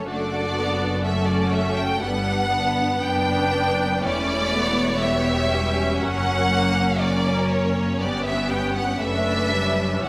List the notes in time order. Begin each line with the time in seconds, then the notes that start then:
0.07 F#1 F#2 A3 D4 F#4 A4 D5
0.57 B3
1.04 A3 C#4 F#4 A4 E5
1.26 D5
1.51 E5
1.76 G5
2.01 G1 G2 G3 B3 D4 B4 F#5
2.52 B3
3.01 F#1 F#2 D4 B4 G5
4.03 E1 E2 A3 C#4 E4 C#5 D5
4.53 B3
5.00 G3 B3 G4 E5
5.51 C#4
5.99 F#1 F#2 F#3 C#4 A#4 F#5
6.49 A#3
6.99 A#3 C#4 A#4 D5
7.50 C#5
8.00 G1 G2 B3 G4 D5
8.23 E5
8.48 G5
8.74 F#5
8.99 F#1 F#2 A3 D4 B4 E5
9.51 G3
10.03 E1 E2 E3 C#4 C#5 F#5